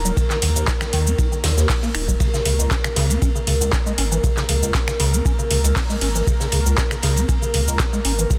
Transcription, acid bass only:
0.05 F#3
0.17 D#3
0.30 D#3
0.42 D#3
0.56 D#2
0.68 D#4
0.81 D#3
0.93 D#3
1.06 D#4
1.18 D#4
1.32 D#3
1.44 D#3
1.57 D#2
1.69 D#4
1.83 A#3
1.95 D#4
2.08 F#3
2.20 C#3
2.34 C#3
2.46 C#3
2.59 C#2
2.71 C#4
2.84 C#3
2.96 C#3
3.10 C#4
3.22 C#4
3.35 C#3
3.47 C#3
3.61 C#2
3.72 C#4
3.86 G#3
3.98 C#4
4.11 E3
4.23 C#3
4.37 C#3
4.49 C#3
4.62 C#2
4.74 C#4
4.88 C#3
5.00 C#3
5.13 C#4
5.25 C#4
5.39 C#3
5.51 C#3
5.64 C#2
5.76 C#4
5.89 G#3
6.02 C#4
6.15 E3
6.27 C#3
6.40 C#3
6.52 C#3
6.66 C#2
6.78 C#4
6.91 C#3
7.03 C#3
7.17 C#4
7.28 C#4
7.42 C#3
7.54 C#3
7.67 C#2
7.79 C#4
7.93 G#3
8.05 C#4
8.18 E3
8.30 C#3

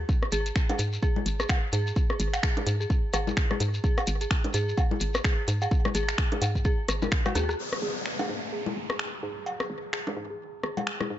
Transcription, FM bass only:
0.32 G#1
0.79 G#2
1.26 G#1
1.73 G#2
2.20 G#1
2.67 G#2
3.14 G#1
3.60 G#2
4.07 G#1
4.54 G#2
5.01 G#1
5.48 G#2
5.95 G#1
6.42 G#2
6.89 G#1
7.35 D#2
7.82 G#1
8.29 G#2
8.76 G#1
9.23 G#2
9.70 G#1
10.17 G#2
10.64 G#1
11.10 G#2

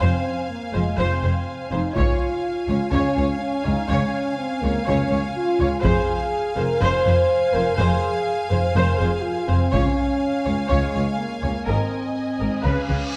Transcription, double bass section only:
0.01 F1
0.74 F1
0.99 F1
1.23 F1
1.71 F1
1.95 C#2
2.69 C#2
2.94 C#2
3.18 C#2
3.66 C#2
3.90 C#2
4.63 C#2
4.88 C#2
5.12 C#2
5.61 C#2
5.85 F1
6.57 F1
6.82 F1
7.06 F1
7.54 F1
7.79 F1
8.53 F1
8.77 F1
9.01 F1
9.50 F1
9.74 C#2
10.47 C#2
10.71 C#2
10.95 C#2
11.44 C#2
11.68 G#1
12.40 G#1
12.65 C#2
12.89 C#2

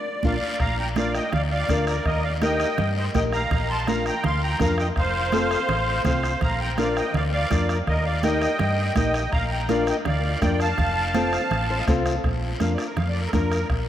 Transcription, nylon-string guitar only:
0.24 D4 F4 A#4
0.97 D4 F4 A#4
1.69 D4 F4 A#4
2.42 D#4 G4 A#4
3.14 D#4 G4 A#4
3.87 D4 F4 A#4
4.60 D4 F4 A#4
5.33 C4 F4 A4
6.05 C4 F4 A4
6.78 D4 F4 A#4
7.51 D4 F4 A#4
8.24 D#4 G4 A#4
8.96 D#4 G4 A#4
9.69 D4 F4 A#4
10.41 D4 F4 A#4
11.15 C4 F4 A4
11.70 C5
11.79 D#5
11.88 C4 F4 A4 F5
12.60 D4 F4 A#4
13.33 D4 F4 A#4

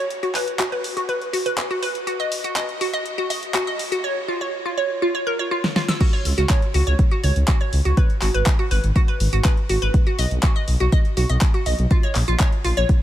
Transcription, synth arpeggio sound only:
0.23 F#4
0.35 B4
0.60 F#4
0.72 B4
0.97 F#4
1.09 B4
1.33 F#4
1.46 B4
1.71 F#4
1.83 B4
2.07 F#4
2.20 D#5
2.44 F#4
2.56 D#5
2.81 F#4
2.93 D#5
3.18 F#4
3.30 D#5
3.55 F#4
3.67 D#5
3.92 F#4
4.04 C#5
4.28 F4
4.41 C#5
4.66 F4
4.78 C#5
5.02 F4
5.15 C#5
5.27 A#4
5.39 C#5
5.51 F4
5.76 F4
5.88 E6
6.00 F#4
6.13 C#5
6.38 F#4
6.50 C#5
6.74 F#4
6.87 C#5
7.11 F#4
7.24 C#5
7.48 F#4
7.61 C#5
7.85 F#4
7.97 B4
8.22 F#4
8.34 B4
8.59 F#4
8.71 B4
8.96 F#4
9.08 B4
9.33 F#4
9.45 B4
9.69 F#4
9.82 B4
10.07 F#4
10.19 D#5
10.43 F#4
10.56 D#5
10.80 F#4
10.92 D#5
11.17 F#4
11.30 D#5
11.54 F#4
11.66 D#5
11.91 F4
12.03 C#5
12.28 F4
12.40 C#5
12.64 F4
12.77 C#5

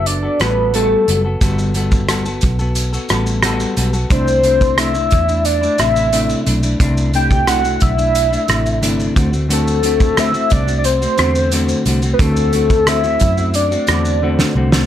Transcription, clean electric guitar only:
Already playing: B3 F#4 A4
0.23 B3 F#4 A4
0.40 G3 B3 F#4 A4
0.74 G3 B3 F#4 A4
1.08 G3 B3 F#4 A4
1.25 B3 F#4 A4
1.41 G3 B3 F#4 A4
1.75 G3 B3 F#4 A4
2.08 G3 B3 F#4 A4
2.26 B3 F#4 A4
2.59 B3 F#4 A4
2.93 B3 F#4 A4
3.10 G3 B3 F#4 A4
3.44 G3 B3 F#4 A4
3.77 G3 B3 F#4 A4
3.93 B3 F#4 A4
4.10 C3 A3 D4 E4
4.43 C3 A3 D4 E4
4.78 C3 A3 D4 E4
4.94 A3 D4 E4
5.28 A3 D4 E4
5.61 A3 D4 E4
5.79 C3 A3 D4 E4
6.12 C3 A3 D4 E4
6.46 C3 A3 D4 E4
6.63 A3 D4 E4
6.80 C3 A3 D4 E4
7.13 C3 A3 D4 E4
7.47 C3 A3 D4 E4
7.63 A3 D4 E4
7.97 A3 D4 E4
8.31 A3 D4 E4
8.48 C3 A3 D4 E4
8.81 C3 A3 D4 E4
9.15 D3 A3 C4 F#4
9.32 A3 C4 F#4
9.49 D3 A3 C4 F#4
9.83 D3 A3 C4 F#4
10.17 D3 A3 C4 F#4
10.33 A3 C4 F#4
10.67 A3 C4 F#4
11.01 A3 C4 F#4
11.17 D3 A3 C4 F#4
11.52 D3 A3 C4 F#4
11.86 D3 A3 C4 F#4
12.03 A3 C4 F#4
12.20 D3 A3 C4 F#4
12.53 D3 A3 C4 F#4
12.87 D3 A3 C4 F#4
13.04 A3 C4 F#4
13.37 A3 C4 F#4
13.71 A3 C4 F#4
13.88 D3 A3 C4 F#4
14.22 D3 A3 C4 F#4
14.55 D3 A3 C4 F#4
14.72 A3 C4 F#4

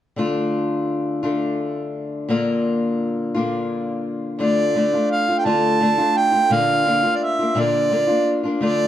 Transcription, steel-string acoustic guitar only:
0.16 D3 A3 D4 F4
1.23 D3 A3 D4 F4
2.29 A#2 D3 A#3 D4 F4
3.34 A#2 D3 A#3 D4 F4
4.39 D3 A3 D4 F4
4.75 D3 A3 D4 F4
4.93 A3 D4 F4
5.28 A3 D4 F4
5.45 D3 A3 D4 F4
5.80 D3 A3 D4 F4
5.98 A3 D4 F4
6.32 A3 D4 F4
6.50 A#2 D3 A#3 D4 F4
6.85 D3 A#3 D4 F4
7.03 A#3 D4 F4
7.39 A#3 D4 F4
7.55 A#2 D3 A#3 D4 F4
7.90 D3 A#3 D4 F4
8.07 A#3 D4 F4
8.43 A#3 D4 F4
8.61 D3 A3 D4 F4

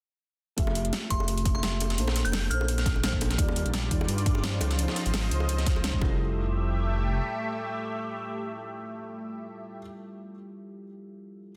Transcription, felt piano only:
0.56 A3 F4 G4 E5
1.09 A3 F4 G4 E5
1.63 A3 F4 G4 E5
1.97 A#3 D4 A4 C5
2.49 A#3 D4 A4 C5
3.03 A#3 D4 A4 C5
3.37 G3 D#4 F4 D5
3.90 G3 D#4 F4 D5
4.43 F3 C#4 D#4 C5
4.77 F3 C#4 D#4 C5
5.30 F3 C#4 D#4 C5
5.84 F3 C#4 D#4 C5
6.00 G3 E4 F4
6.04 A4

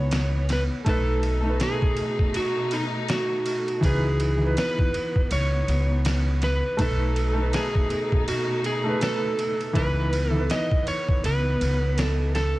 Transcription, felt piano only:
Already playing: E3 D#4 B4
0.84 A3 D#4
0.89 B4
1.41 A3
1.46 D#4
1.50 B4
3.81 E3 D#4
3.85 B4
4.37 E3
4.42 D#4
4.46 B4
6.77 A3 D#4
6.81 B4
7.33 A3
7.38 D#4
7.42 B4
8.84 A3 D#4
8.89 B4
8.99 A3 D#4
9.03 B4
9.73 E3 D#4
9.77 B4
10.31 E3
10.35 D#4
10.40 B4

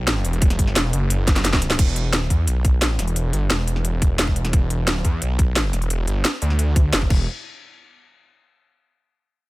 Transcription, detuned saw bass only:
Already playing: B1
0.25 E1
0.59 G1
0.76 E1
0.93 F#1
1.79 E1
2.30 E2
2.47 B1
2.99 E1
3.33 G1
3.50 E1
4.02 E1
4.53 E1
5.05 E2
5.22 B1
5.73 E1
6.07 G1
6.42 D2
6.93 F#1
7.10 E1

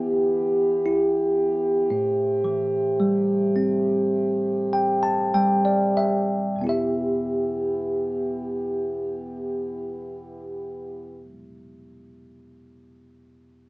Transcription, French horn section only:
Already playing: E3 B3 G4
1.89 C3 A3
6.63 E3 B3 G4

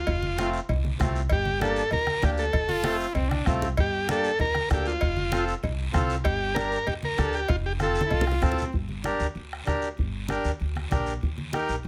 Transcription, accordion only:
0.38 A3 C4 F4
0.99 A3 C4 F4
1.60 A#3 D4 G4
2.22 A#3 D4 G4
2.83 A3 C4 F4
3.45 A3 C4 F4
4.08 A#3 D4 G4
4.70 A#3 D4 A4
5.32 C4 F4 A4
5.93 C4 F4 A4
6.55 D4 G4 A#4
7.17 D4 G4 A#4
7.80 C4 F4 A4
8.42 C4 F4 A4
9.05 D4 G4 A#4
9.66 D4 G4 A#4
10.29 D4 G4 A#4
10.91 D4 G4 A#4
11.53 D#4 G4 A#4

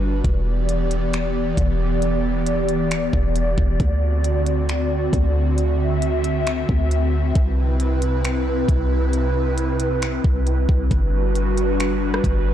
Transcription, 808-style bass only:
Already playing: G1
0.24 E1
1.57 E1
3.13 E1
3.58 E1
3.80 D2
5.13 D2
6.69 D2
7.36 C2
8.69 C2
10.24 C2
10.69 C2
10.91 G1
12.24 G1

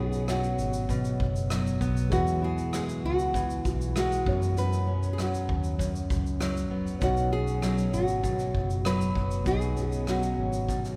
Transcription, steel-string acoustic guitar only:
Already playing: B2 F#3 B3 C#4
0.28 F#3
0.90 B2
1.51 F#3
1.81 B3
2.12 E3
2.42 E4
2.73 G#3
3.35 E3
3.96 G#3
4.27 F#2
4.57 F#2
4.87 C#4
5.18 F#3
5.79 F#2
6.40 F#3
6.70 B3
7.01 B2
7.32 C#4
7.62 F#3
8.23 B2
8.85 F#3
9.15 B3
9.46 B2
9.76 C#4
10.07 F#3
10.69 B2

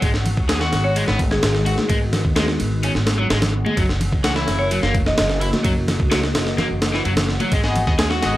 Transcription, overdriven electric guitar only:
0.03 G#3
0.49 G#4
0.61 F#4
0.96 G#3
1.08 B3
1.67 F#4
1.90 G#3
2.37 G#3
2.84 C#4
3.19 F#3
3.30 G#3
3.66 G#3
3.78 F#3
4.25 F#4
4.36 E4
4.71 F#3
4.83 A#3
5.42 E4
5.65 F#3
6.12 F#3
6.59 A#3
6.94 E3
7.06 F#3
7.41 F#3
7.53 G#3
7.99 G#4
8.11 F#4

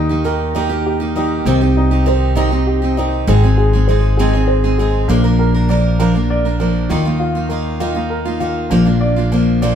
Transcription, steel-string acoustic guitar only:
Already playing: A#3
0.09 A#3 D#4 G4
0.24 D#3 A#3 D#4 G4
0.55 D#3 A#3 D#4 G4
0.69 A#3 D#4 G4
1.00 A#3 D#4 G4
1.16 D#3 A#3 D#4 G4
1.46 C3 D#3 C4 D#4 G4
1.61 C4 D#4 G4
1.91 C4 D#4 G4
2.06 D#3 C4 D#4 G4
2.35 C3 D#3 C4 D#4 G4
2.51 C4 D#4 G4
2.82 C4 D#4 G4
2.97 D#3 C4 D#4 G4
3.27 G#2 D#3 G#3 C4 D#4 G#4
3.43 G#3 C4 D#4 G#4
3.73 G#3 C4 D#4 G#4
3.89 G#3 C4 D#4 G#4
4.19 G#2 D#3 G#3 C4 D#4 G#4
4.33 G#3 C4 D#4 G#4
4.64 G#3 C4 D#4 G#4
4.79 G#3 C4 D#4 G#4
5.09 A#2 F3 A#3 D4 A#4
5.24 A#3 D4 A#4
5.54 A#3 D4 A#4
5.69 F3 A#3 D4 A#4
6.00 A#2 F3 A#3 D4 A#4
6.15 A#3 D4 A#4
6.45 A#3 D4 A#4
6.60 F3 A#3 D4 A#4
6.90 D#3 A#3 D#4 F4
7.05 A#3 D#4 F4
7.35 A#3 D#4 F4
7.50 D#3 A#3 D#4 F4
7.80 D#3 A#3 D#4 F4
7.95 A#3 D#4 F4
8.25 A#3 D#4 F4
8.40 D#3 A#3 D#4 F4
8.71 A#2 F3 A#3 D4 F4
8.85 A#3 D4 F4
9.16 A#3 D4 F4
9.32 F3 A#3 D4 F4
9.62 A#2 F3 A#3 D4 F4

